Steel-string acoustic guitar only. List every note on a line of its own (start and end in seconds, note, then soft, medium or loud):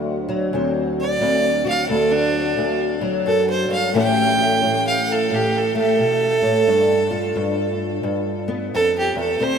0.00 0.52 D2 medium
0.00 3.94 D3 medium
0.00 0.27 F#3 medium
0.00 0.53 C4 medium
0.00 1.19 F#4 medium
0.29 3.00 F#3 medium
0.53 1.19 D2 medium
0.53 1.20 C4 medium
1.21 1.88 D2 medium
1.21 3.91 C4 medium
1.64 3.91 F#4 medium
1.89 2.56 D2 medium
2.57 3.25 D2 medium
3.01 3.95 F#3 medium
3.26 3.68 F#2 medium
3.69 3.94 G2 medium
3.93 4.61 A2 medium
3.93 6.64 E3 medium
3.93 5.73 A3 medium
3.93 6.65 C#4 medium
3.93 4.37 G4 medium
4.38 6.64 G4 medium
4.62 5.29 A2 medium
5.30 5.98 A2 medium
5.75 6.65 A3 medium
5.99 6.42 B2 medium
6.42 6.67 A2 medium
6.67 7.34 G2 medium
6.67 9.40 D4 medium
7.11 9.38 F4 medium
7.36 8.02 G2 medium
8.03 8.72 G2 medium
8.48 9.38 B3 medium
8.74 9.15 F2 medium
9.15 9.39 E2 medium
9.40 9.58 D2 medium
9.40 9.58 C4 medium